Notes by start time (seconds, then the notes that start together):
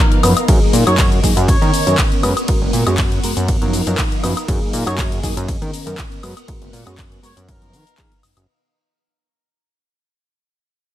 Already playing: F3 B3 D#4 A#4 F5
0.12 closed hi-hat
0.23 F#2 F3 B3 D#4 B4, open hi-hat, high woodblock, shaker
0.37 closed hi-hat, high woodblock, shaker
0.48 F#2 F#3 A#3 D#4 G#4 D#5, kick, closed hi-hat, ride, shaker
0.73 A#2, open hi-hat, shaker
0.86 F#2 F#3 A#3 D#4 C#5, closed hi-hat, high woodblock, shaker
0.98 C#5, kick, clap, closed hi-hat, ride, shaker
1.12 closed hi-hat
1.23 F#2 F#3 A#3 D#4 G#4, kick, open hi-hat, shaker
1.37 F#2, closed hi-hat, shaker
1.48 C#4 A#4 C#5, kick, closed hi-hat, ride, shaker
1.62 D#3 B3 C#4 A#4, closed hi-hat
1.74 open hi-hat, shaker
1.87 F#2 D#3 B3 C#4 A#4, closed hi-hat, shaker
1.98 kick, clap, closed hi-hat, ride, shaker
2.12 closed hi-hat
2.23 F#2 G#3 B3 F#4 B4 F#5, open hi-hat, high woodblock, shaker
2.37 closed hi-hat, high woodblock, shaker
2.48 F#1 G#3 B3 F#4 A#4, kick, closed hi-hat, ride, shaker
2.62 F#1
2.73 A#2, open hi-hat, shaker
2.87 F#2 G#3 B3 F#4 C#5, closed hi-hat, high woodblock, shaker
2.98 kick, clap, closed hi-hat, ride, shaker
3.12 closed hi-hat
3.23 F#2 G#3 B3 F#4 A#4, open hi-hat, shaker
3.37 F#2, closed hi-hat, shaker
3.48 B3 D#4 A#4 F5, kick, closed hi-hat, ride, shaker
3.62 F#2 F3 B3 D#4 A#4, closed hi-hat
3.73 open hi-hat, shaker
3.87 F#2 F3 B3 D#4 A#4, closed hi-hat, shaker
3.98 kick, clap, closed hi-hat, ride, shaker
4.12 closed hi-hat
4.23 F#2 F3 B3 D#4 B4, open hi-hat, high woodblock, shaker
4.37 closed hi-hat, high woodblock, shaker
4.48 F#2 F#3 A#3 D#4 G#4 D#5, kick, closed hi-hat, ride, shaker
4.73 A#2, open hi-hat, shaker
4.86 F#2 F#3 A#3 D#4 C#5, closed hi-hat, high woodblock, shaker
4.98 C#5, kick, clap, closed hi-hat, ride, shaker
5.12 closed hi-hat
5.23 F#2 F#3 A#3 D#4 G#4, kick, open hi-hat, shaker
5.37 F#2, closed hi-hat, shaker
5.48 C#4 A#4, kick, closed hi-hat, ride, shaker
5.61 D#3 B3 C#4 A#4, closed hi-hat
5.74 open hi-hat, shaker
5.86 F#2 D#3 B3 C#4 A#4, closed hi-hat, shaker
5.98 kick, clap, closed hi-hat, ride, shaker
6.12 closed hi-hat
6.23 F#2 G#3 B3 F#4 B4 F#5, open hi-hat, high woodblock, shaker
6.37 closed hi-hat, high woodblock, shaker
6.48 F#1 G#3 B3 F#4 A#4, kick, closed hi-hat, ride, shaker
6.62 F#1, closed hi-hat
6.73 A#2, open hi-hat, shaker
6.86 F#2 G#3 B3 F#4 C#5, closed hi-hat, high woodblock, shaker
6.98 kick, clap, closed hi-hat, ride, shaker
7.12 closed hi-hat
7.22 F#2 G#3 B3 F#4 A#4 C#5, open hi-hat, shaker
7.37 F#2, closed hi-hat, shaker
7.48 B3 D#4 A#4 F5, kick, closed hi-hat, ride, shaker
7.61 F3 B3 D#4 A#4, closed hi-hat
7.73 D#3, open hi-hat, shaker
7.87 closed hi-hat, shaker
7.98 F3 B3 D#4 G#4, kick, clap, closed hi-hat, ride
8.12 closed hi-hat
8.23 F#1, open hi-hat, high woodblock, shaker
8.37 F#1, closed hi-hat, high woodblock, shaker